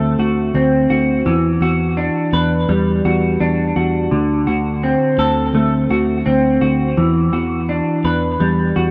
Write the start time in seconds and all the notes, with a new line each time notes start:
Already playing: D2 D3 A3 C4 F#4 A4
0.19 D2 F#4
0.54 D2 C4
0.90 D2 F#4
1.26 E2 E3
1.61 E2 F#4
1.97 D4
2.33 E2 B4
2.69 E2 G3
3.05 E2 F#4
3.40 E2 D4
3.76 E2 F#4
4.11 D2 D3
4.47 D2 F#4
4.83 C4
5.18 D2 A4
5.54 D2 A3
5.90 D2 F#4
6.26 D2 C4
6.61 D2 F#4
6.97 E2 E3
7.33 E2 F#4
7.69 D4
8.04 E2 B4
8.40 E2 G3
8.76 E2 F#4